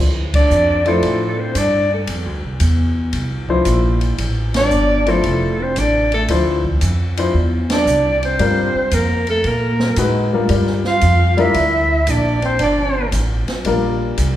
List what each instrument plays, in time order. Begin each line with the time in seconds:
0.00 upright bass D2
0.34 trombone D4, clarinet D5, kick, ride
0.50 upright bass F2, hi-hat pedal
0.85 grand piano F3 D4 E4 C5, trombone A3, clarinet A4, ride
1.03 upright bass A2, kick, ride
1.38 trombone C4, clarinet C5
1.55 upright bass G2, trombone D4, clarinet D5, kick, hi-hat pedal, ride
1.91 trombone A3, clarinet A4
2.07 upright bass F2, kick, ride
2.25 upright bass D2
2.43 upright bass C2
2.60 upright bass E2, kick, hi-hat pedal, ride
3.13 upright bass C2, kick, ride
3.49 grand piano F3 D4 E4 C5, kick
3.65 upright bass A#1, hi-hat pedal, ride
4.01 ride
4.18 upright bass A1, kick, ride
4.54 trombone D4, clarinet D5, snare, ride
4.71 upright bass G1, hi-hat pedal
5.06 grand piano F3 D4 E4 C5, trombone A3, clarinet A4, ride
5.24 upright bass F1, kick, ride
5.60 trombone C4, clarinet C5
5.76 upright bass A1, trombone D4, clarinet D5, kick, hi-hat pedal, ride
6.12 trombone A3, clarinet A4, ride
6.28 upright bass D2, grand piano F3 D4 E4 C5, kick, ride
6.65 kick
6.81 upright bass F2, hi-hat pedal, ride
7.17 grand piano F3 D4 E4 C5, ride
7.34 upright bass E2, kick
7.70 trombone D4, clarinet D5, snare, ride
7.86 upright bass C2, hi-hat pedal
8.23 trombone C4, clarinet C5, ride
8.39 upright bass G2, grand piano G3 D4 F4 A#4, kick, ride
8.75 muted upright bass stroke
8.91 upright bass F2, trombone A#3, clarinet A#4, kick, hi-hat pedal, ride
9.27 trombone A3, clarinet A4, ride
9.44 upright bass A#2, trombone A#3, clarinet A#4, kick, ride
9.80 snare
9.96 upright bass A2, grand piano G#3 D#4 F#4 B4, kick, hi-hat pedal, ride
10.33 grand piano G3 D4 F4 A#4
10.49 upright bass G2, grand piano G3 D4 F4 A#4, kick, ride
10.67 snare
10.84 trombone F4, clarinet F5, snare
11.01 upright bass F2, kick, hi-hat pedal, ride
11.37 grand piano G3 D4 F4 A#4, trombone E4, clarinet E5, ride
11.54 upright bass D2, kick, ride
12.07 upright bass A#1, trombone D4, clarinet D5, kick, hi-hat pedal, ride
12.42 trombone C4, clarinet C5, ride
12.59 upright bass G1, trombone D4, kick, ride
12.63 clarinet D5
13.12 upright bass A1, kick, hi-hat pedal, ride
13.48 muted upright bass stroke, snare, ride
13.65 upright bass A#1, grand piano G3 D4 F4 A#4, kick, ride
14.17 upright bass C2, kick, hi-hat pedal, ride